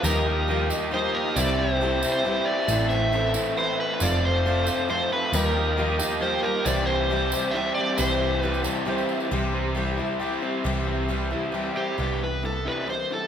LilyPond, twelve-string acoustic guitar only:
\new Staff \with { instrumentName = "Twelve-string acoustic guitar" } { \time 3/4 \key c \major \tempo 4 = 136 <ees f g ees' bes'>4 <f g ees' bes'>8 <g ees' bes'>8 <f g ees' bes'>4 | <c g c' e' g'>4 <g c' e' g'>4 <g c' e' g'>4 | <a, e c' e' a'>4 <e c' e' a'>4 <e c' e' a'>4 | <f c' f' a'>4 <f c' f' a'>8 <c' f' a'>8 <f c' f' a'>8 <c' f' a'>8 |
<ees f g ees' bes'>4 <f g ees' bes'>4 <f g ees' bes'>8 <g ees' bes'>8 | <c e g c' e'>4 <e g c' e'>8 <g c' e'>8 <e g c' e'>8 <g c' e'>8 | <c e g c' e'>4 <e g c' e'>8 <g c' e'>8 <e g c' e'>4 | <c e g c' e'>4 <e g c' e'>8 <g c' e'>8 <e g c' e'>8 <g c' e'>8 |
<c e g c' e'>4 <e g c' e'>8 <g c' e'>8 <e g c' e'>8 <g c' e'>8 | <c e g b e'>4 <e g b e'>4 <e g b e'>8 <g b e'>8 | }